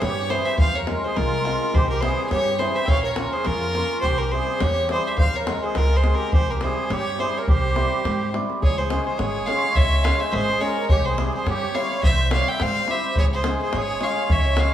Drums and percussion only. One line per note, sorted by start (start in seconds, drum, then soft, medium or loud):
0.02 davul high medium
0.30 davul high medium
0.58 davul low medium
0.74 davul high soft
0.87 davul high medium
1.03 davul high soft
1.17 davul high medium
1.45 davul high medium
1.74 davul low medium
1.91 davul high soft
2.03 davul high medium
2.18 davul high soft
2.31 davul high medium
2.59 davul high medium
2.88 davul low medium
3.04 davul high soft
3.16 davul high medium
3.45 davul high medium
3.61 davul high soft
3.75 davul high medium
4.03 davul low medium
4.19 davul high soft
4.48 davul high soft
4.61 davul high medium
4.89 davul high medium
5.18 davul low medium
5.34 davul high soft
5.47 davul high medium
5.63 davul high soft
5.75 davul high medium
6.04 davul high medium
6.32 davul low medium
6.48 davul high soft
6.61 davul high medium
6.77 davul high soft
6.90 davul high medium
7.19 davul high soft
7.48 davul low medium
7.64 davul high soft
7.76 davul high medium
7.93 davul high soft
8.05 davul high medium
8.21 davul high soft
8.34 davul high medium
8.50 davul high soft
8.63 davul low medium
8.79 davul high soft
8.90 davul high medium
9.07 davul high soft
9.19 davul high medium
9.35 davul high soft
9.47 davul high medium
9.64 davul high soft
9.77 davul low medium
9.93 davul high soft
10.05 davul high medium
10.21 davul high soft
10.33 davul high medium
10.49 davul high soft
10.61 davul high soft
10.77 davul high soft
10.89 davul low medium
11.05 davul high soft
11.18 davul high medium
11.33 davul high soft
11.47 davul high medium
11.62 davul high soft
11.75 davul high medium
11.91 davul high soft
12.03 davul low medium
12.19 davul high soft
12.31 davul high medium
12.47 davul high soft
12.60 davul high medium
12.75 davul high soft
12.88 davul high medium
13.16 davul low medium
13.32 davul high soft
13.44 davul high medium
13.60 davul high soft
13.73 davul high medium
14.01 davul high medium
14.17 davul high soft
14.29 davul low medium
14.45 davul high soft
14.57 davul high medium